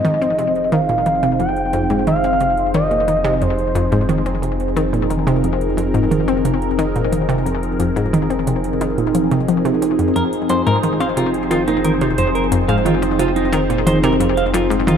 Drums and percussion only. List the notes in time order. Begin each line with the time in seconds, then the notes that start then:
0.05 closed hi-hat, high tom
0.22 closed hi-hat
0.39 closed hi-hat
0.55 closed hi-hat
0.72 closed hi-hat
0.89 closed hi-hat
1.06 closed hi-hat, high tom
1.23 closed hi-hat
1.40 closed hi-hat
1.56 closed hi-hat
1.73 closed hi-hat
1.90 closed hi-hat
2.07 closed hi-hat, high tom
2.24 closed hi-hat
2.40 closed hi-hat
2.57 closed hi-hat
2.74 closed hi-hat
2.91 closed hi-hat
3.08 closed hi-hat, high tom
3.25 closed hi-hat
3.42 closed hi-hat
3.59 closed hi-hat
3.75 closed hi-hat
3.92 closed hi-hat
4.09 closed hi-hat, high tom
4.26 closed hi-hat
4.43 closed hi-hat
4.60 closed hi-hat
4.77 closed hi-hat
4.94 closed hi-hat
5.10 closed hi-hat, high tom
5.27 closed hi-hat
5.44 closed hi-hat
5.61 closed hi-hat
5.78 closed hi-hat
5.95 closed hi-hat
6.12 closed hi-hat, high tom
6.28 closed hi-hat
6.45 closed hi-hat
6.62 closed hi-hat
6.79 closed hi-hat
6.96 closed hi-hat
7.13 closed hi-hat, high tom
7.29 closed hi-hat
7.46 closed hi-hat
7.63 closed hi-hat
7.80 closed hi-hat
7.97 closed hi-hat
8.14 closed hi-hat, high tom
8.30 closed hi-hat
8.47 closed hi-hat
8.64 closed hi-hat
8.81 closed hi-hat
8.98 closed hi-hat
9.15 closed hi-hat, high tom
9.31 closed hi-hat
9.48 closed hi-hat
9.65 closed hi-hat
9.82 closed hi-hat
9.99 closed hi-hat
10.16 closed hi-hat
10.33 closed hi-hat
10.49 closed hi-hat
10.67 closed hi-hat
10.83 closed hi-hat, high tom
11.00 closed hi-hat
11.17 closed hi-hat
11.34 closed hi-hat
11.51 closed hi-hat
11.68 closed hi-hat
11.85 closed hi-hat, high tom
12.01 closed hi-hat
12.18 closed hi-hat
12.35 closed hi-hat
12.52 closed hi-hat
12.69 closed hi-hat
12.86 closed hi-hat, high tom
13.03 closed hi-hat
13.19 closed hi-hat
13.36 closed hi-hat
13.53 closed hi-hat
13.70 closed hi-hat
13.87 closed hi-hat, high tom
14.04 closed hi-hat
14.21 closed hi-hat
14.37 closed hi-hat
14.54 closed hi-hat
14.71 closed hi-hat
14.88 closed hi-hat, high tom